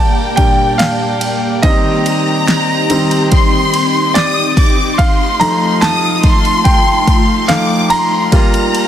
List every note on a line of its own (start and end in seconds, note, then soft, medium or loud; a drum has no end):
0.00 0.35 A#2 medium
0.00 0.36 G3 medium
0.00 1.61 A#3 medium
0.00 0.36 D4 medium
0.00 4.95 G4 medium
0.00 1.60 D5 medium
0.00 0.78 F5 loud
0.00 1.59 G5 medium
0.00 0.34 A5 medium
0.00 1.66 A#5 medium
0.36 0.75 A#2 soft
0.36 0.76 G3 soft
0.36 0.76 D4 soft
0.36 0.46 G5 medium
0.36 kick medium
0.36 ride medium
0.78 1.65 F5 medium
0.78 snare loud
0.78 ride medium
1.21 ride medium
1.62 2.19 D#3 medium
1.62 2.20 G3 soft
1.62 4.95 C4 medium
1.62 2.20 C4 medium
1.62 8.29 D#4 loud
1.62 4.11 D#5 medium
1.62 3.28 A#5 loud
1.62 kick loud
1.62 ride medium
2.06 ride soft
2.48 snare loud
2.48 ride medium
2.90 3.28 D#3 soft
2.90 3.28 G3 soft
2.90 3.28 C4 medium
2.90 ride medium
3.11 ride soft
3.32 4.15 C6 loud
3.32 kick medium
3.32 ride medium
3.74 ride medium
4.14 5.00 D5 medium
4.14 4.57 D#6 loud
4.14 snare loud
4.14 ride medium
4.57 4.96 D6 medium
4.57 kick medium
4.57 ride medium
4.98 8.29 A3 medium
4.98 8.29 F4 medium
4.98 5.37 F5 medium
4.98 5.82 C6 loud
4.98 kick loud
4.98 ride medium
5.40 7.47 F3 medium
5.40 7.47 A3 soft
5.40 7.48 D#4 medium
5.40 5.83 A#5 medium
5.40 ride soft
5.81 6.67 A5 loud
5.81 6.24 D#6 loud
5.81 snare loud
5.81 ride medium
6.24 7.49 C6 loud
6.24 kick medium
6.24 ride medium
6.45 ride soft
6.64 7.51 G5 medium
6.64 kick medium
6.64 ride medium
7.07 kick medium
7.07 ride medium
7.48 7.86 F3 medium
7.48 7.87 A3 soft
7.48 7.87 D#4 medium
7.48 7.91 F5 medium
7.48 7.90 D6 loud
7.48 snare loud
7.48 ride medium
7.90 8.88 A#5 loud
7.90 8.32 C6 medium
7.90 ride medium
8.32 8.88 G3 medium
8.32 8.88 A#3 medium
8.32 8.88 F4 medium
8.32 8.88 G4 medium
8.32 8.88 F5 medium
8.32 8.88 A#5 loud
8.32 kick loud
8.32 ride medium
8.54 ride soft
8.75 ride soft